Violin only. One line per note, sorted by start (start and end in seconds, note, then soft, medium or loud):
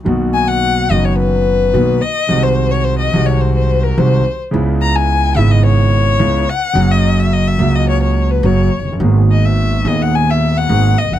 0.34 0.49 G#5 medium
0.48 0.92 F#5 loud
0.91 1.06 D#5 medium
1.05 1.17 C#5 medium
1.18 2.03 B4 medium
2.01 2.45 D#5 loud
2.43 2.73 C5 medium
2.71 2.86 C#5 medium
2.84 2.98 C5 medium
2.99 3.28 D#5 medium
3.26 3.42 C#5 medium
3.41 3.54 C5 medium
3.55 3.85 C5 medium
3.83 4.00 A#4 medium
3.98 4.40 C5 medium
4.82 4.97 A#5 medium
4.96 5.38 G#5 loud
5.37 5.53 E5 medium
5.52 5.65 D#5 medium
5.65 6.51 C#5 medium
6.49 6.93 F#5 loud
6.92 7.21 D#5 medium
7.19 7.34 E5 medium
7.33 7.49 D#5 medium
7.48 7.77 E5 medium
7.75 7.89 D#5 medium
7.89 8.02 C#5 medium
8.03 8.32 C#5 medium
8.31 8.47 B4 medium
8.45 8.87 C#5 medium
9.31 9.47 D#5 medium
9.46 9.89 E5 medium
9.87 10.03 D#5 medium
10.02 10.17 F#5 medium
10.15 10.31 G#5 medium
10.30 10.59 E5 medium
10.58 11.00 F#5 loud
10.98 11.15 D#5 medium
11.13 11.19 F#5 medium